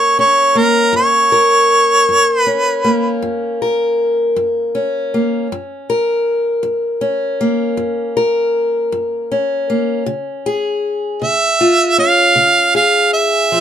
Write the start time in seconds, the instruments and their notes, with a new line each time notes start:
Already playing: steel-string acoustic guitar F#2 A#3 C#4 A#4, harmonica C#5
0.19 steel-string acoustic guitar C#4, harmonica C#5
0.55 steel-string acoustic guitar A#3, harmonica A#4
0.93 steel-string acoustic guitar F#2, harmonica C#5
1.32 steel-string acoustic guitar A#4
2.09 steel-string acoustic guitar F#2
2.40 harmonica B4
2.47 steel-string acoustic guitar C#4
2.84 steel-string acoustic guitar A#3
3.22 steel-string acoustic guitar F#2
3.62 steel-string acoustic guitar A#4
4.36 steel-string acoustic guitar F#2
4.75 steel-string acoustic guitar C#4
5.14 steel-string acoustic guitar A#3
5.52 steel-string acoustic guitar F#2
5.90 steel-string acoustic guitar A#4
6.63 steel-string acoustic guitar F#2
7.01 steel-string acoustic guitar C#4
7.41 steel-string acoustic guitar A#3
7.77 steel-string acoustic guitar F#2
8.17 steel-string acoustic guitar A#4
8.92 steel-string acoustic guitar F#2
9.32 steel-string acoustic guitar C#4
9.70 steel-string acoustic guitar A#3
10.06 steel-string acoustic guitar C#3
10.46 steel-string acoustic guitar G#4
11.22 steel-string acoustic guitar C#3, harmonica E5
11.61 steel-string acoustic guitar F4
11.98 steel-string acoustic guitar C#4, harmonica F5
12.36 steel-string acoustic guitar C#3
12.75 steel-string acoustic guitar G#4, harmonica F5
13.13 harmonica E5
13.52 steel-string acoustic guitar F3